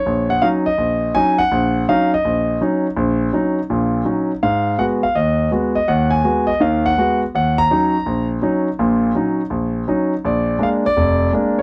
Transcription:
X:1
M:4/4
L:1/8
Q:"Swing" 1/4=165
K:Ebm
V:1 name="Grand piano"
d g f e3 a g- | g2 f e3 z2 | z8 | f2 g f e2 z e |
g a2 e f g2 z | g b4 z3 | z8 | =d2 f d3 z _d |]
V:2 name="Grand piano" clef=bass
B,,,2 [G,DE] z B,,,2 [G,DE] z | B,,,2 [G,DE] z B,,,2 [G,DE] z | B,,,2 [G,DE] z [B,,,B,,]2 [G,DE] z | A,,2 [A,CG] z E,,2 [A,CG] z |
E,,2 [A,CG] z [E,,E,]2 [A,CG] z | E,,2 [G,DE] z B,,,2 [G,DE] z | [B,,,B,,]2 [G,DE] z B,,,2 [G,DE] z | B,,,2 [A,B,=D] z F,,,2 [A,B,D] z |]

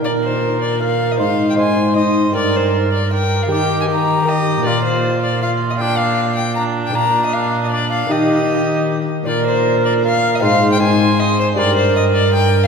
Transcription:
X:1
M:3/4
L:1/16
Q:1/4=156
K:Bbmix
V:1 name="Violin"
d2 c4 d2 f3 e | f3 g a4 e4 | d2 c4 d2 g3 f | g3 a b4 e4 |
d2 c4 d2 f3 e | g2 f4 g2 b3 g | b3 e f3 e d2 f2 | e8- e2 z2 |
d2 c4 d2 f3 e | f3 g a4 e2 c2 | d2 c2 e2 d2 g3 z |]
V:2 name="Cor anglais"
B8 B4 | c4 c4 c4 | B8 B4 | G4 G4 G4 |
F8 F4 | D6 z2 D4 | D4 D4 D4 | G8- G2 z2 |
B8 B4 | c4 c4 c4 | B8 B4 |]
V:3 name="Lute"
[B,DB]12 | [CEe]4 [CEe]4 [CEe]4 | [B,GB]12 | [B,GB]4 [B,GB]4 [B,GB]4 |
[B,FB]12 | [B,DB]12 | [B,DB]12 | [B,EG]12 |
[B,DF]12 | [CEA]4 [CEA]8 | [DGB]12 |]
V:4 name="Lute" clef=bass
B,,12 | A,,12 | G,,12 | E,12 |
B,,12- | B,,12 | B,,12 | E,8- E,2 z2 |
B,,12 | A,,12 | G,,12 |]
V:5 name="Cello" clef=bass
B,,12 | A,,12 | G,,12 | E,12 |
B,,12- | B,,12 | B,,12 | E,8- E,2 z2 |
B,,12 | A,,12 | G,,12 |]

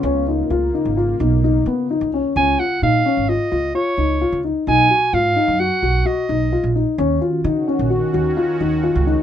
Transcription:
X:1
M:5/4
L:1/16
Q:1/4=130
K:C#mix
V:1 name="Soprano saxophone"
z16 z4 | g2 f2 e4 d4 c6 z2 | g4 e4 f4 d6 z2 | z16 z4 |]
V:2 name="Grand piano"
C2 D2 E2 D2 E2 D2 D2 B,2 D2 C2 | C2 E2 D2 C2 E2 E2 E2 D2 E2 D2 | D2 F2 E2 D2 F2 F2 F2 D2 E2 D2 | C2 E2 D2 C2 F2 F2 E2 D2 E2 D2 |]
V:3 name="Analog synth pad"
[C,A,E]16- [C,A,E]4 | z16 z4 | z16 z4 | [D,CF]16- [D,CF]4 |]
V:4 name="Upright bass" clef=bass
C,,4 C,,2 z G,,,3 B,,,4 C,3 C,,2 z | C,,2 z2 A,,2 z G,,,2 z C,,2 z2 C,,3 C,,2 z | B,,,2 z2 G,,2 z F,,2 z B,,,2 z2 B,,,3 A,,,2 z | D,,2 z2 C,2 z A,,,2 z D,,2 z2 D,,3 C,,2 z |]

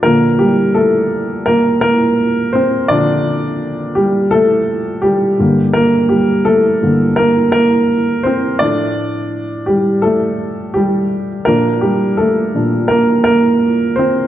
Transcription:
X:1
M:4/4
L:1/16
Q:"Swing 16ths" 1/4=84
K:Bb
V:1 name="Upright piano"
[B,B]2 [G,G]2 [A,A]4 [B,B]2 [B,B]4 [Cc]2 | [Dd]6 [G,G]2 [A,A]4 [G,G]3 z | [B,B]2 [G,G]2 [A,A]4 [B,B]2 [B,B]4 [Cc]2 | [Dd]6 [G,G]2 [A,A]4 [G,G]3 z |
[B,B]2 [G,G]2 [A,A]4 [B,B]2 [B,B]4 [Cc]2 |]
V:2 name="Upright piano" clef=bass
[B,,D,F,]16 | [B,,D,F,]12- [B,,D,F,]2 [G,,D,B,]2 | z6 [G,,D,B,]2 z8 | [A,,F,A,]16 |
[B,,F,D]6 [B,,F,D]2 z8 |]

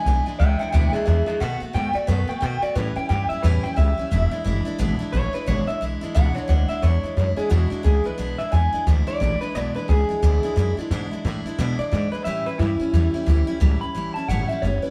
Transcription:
X:1
M:4/4
L:1/8
Q:"Swing" 1/4=177
K:Emix
V:1 name="Clean electric guitar"
g z [e=g] [eg] [eg] [^Ge] [Ge] [Ge] | f z =g d B g g d | B =g g e B g e2- | e2 z4 c B |
c e z2 f c f e | c3 G F2 G B- | B e g2 z d2 B | d B G6 |
z4 z d2 B | e B E6 | z b2 a f e c B |]
V:2 name="Steel-string acoustic guitar" clef=bass
[E,,B,,E,G,DE] [E,G,DE] [E,G,DE] [E,G,DE] [E,,B,,E,G,DE] [E,G,DE] [E,G,DE] [E,G,DE] | [B,,^D,A,B,F] [A,B,F] [D,A,B,F] [A,B,F] [B,,D,A,B,F] [A,B,F] [D,A,B,F] [A,B,F] | [A,,E,=G,CE] [G,CE] [E,G,CE] [G,CE] [A,,E,G,CE] [G,CE] [E,G,CE] [G,CE] | [E,,B,,E,G,DE] [E,G,DE] [E,G,DE] [E,G,DE] [E,,B,,E,G,DE] [E,G,DE] [E,G,DE] [E,G,DE] |
[E,,B,,E,G,DE] [E,G,DE] [E,G,DE] [E,G,DE] [E,,B,,E,G,DE] [E,G,DE] [E,G,DE] [E,G,DE] | [E,,B,,E,G,DE] [E,G,DE] [E,G,DE] [E,G,DE] [E,,B,,E,G,DE] [E,G,DE] [E,G,DE] [E,G,DE] | [E,,B,,E,G,DE] [E,G,DE] [E,G,DE] [E,G,DE] [E,,B,,E,G,DE] [E,G,DE] [E,G,DE] [E,G,DE] | [E,,B,,E,G,DE] [E,G,DE] [E,G,DE] [E,G,DE] [E,,B,,E,G,DE] [E,G,DE] [E,G,DE] [E,G,DE] |
[E,,B,,E,G,DE] [E,G,DE] [E,G,DE] [E,G,DE] [E,,B,,E,G,DE] [E,G,DE] [E,G,DE] [E,G,DE] | [A,,E,=G,CE] [G,CE] [E,G,CE] [G,CE] [A,,E,G,CE] [G,CE] [E,G,CE] [G,CE] | [A,,E,=G,CE] [G,CE] [E,G,CE] [G,CE] [A,,E,G,CE] [G,CE] [E,G,CE] [G,CE] |]
V:3 name="Upright bass" clef=bass
B,,, z C,, z D,, z E,, z | B,, z G,, z F,, z B,, z | A,, z =G,, z E,, z C,, z | E,,, z F,,, z G,,, z A,,, z |
G,,, z B,,, z C,, z D,, z | E,, z F,, z E,, z C,, z | B,,, z E,, z D,, z A,,, z | B,,, z C,, z D,, z F,, z |
G,, z A,, z B,, z G,, z | A,, z =G,, z E,, z D,, z | C,, z A,,, z =G,,, z F,,, z |]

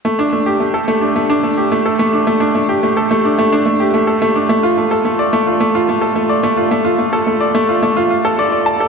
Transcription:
X:1
M:4/4
L:1/16
Q:1/4=108
K:Gm
V:1 name="Upright piano"
A, D A, G A, A A, D A, D A, G A, A A, D | A, D A, G A, A A, D A, D A, G A, A A, D | A, F A, A A, d A, F A, F A, A A, d A, F | A, F A, A A, d A, F A, F F A d d a A |]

